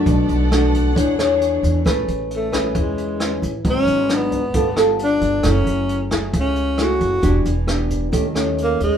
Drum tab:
HH |xxxxxxxx|xxxxxxxx|xxxxxxxx|xxxxxxxx|
SD |--r--r--|r--r--r-|--r--r--|r--r--r-|
BD |o--oo--o|o--oo--o|o--oo--o|o--oo--o|

HH |xxxxxxxx|
SD |--r--r--|
BD |o--oo--o|